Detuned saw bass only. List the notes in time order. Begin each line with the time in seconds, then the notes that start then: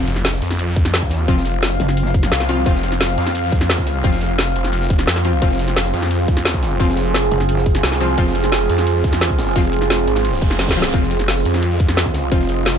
Already playing: F1
0.42 F2
1.02 E2
1.28 F1
2.32 C2
2.66 F1
3.18 F2
4.04 F1
4.56 F1
5.07 F2
5.42 F1
5.94 F2
6.80 F1
7.83 C2
8.18 F1
8.70 F2
9.56 F1
10.07 G#1
10.42 F1
10.94 F1
11.45 F2
12.32 F1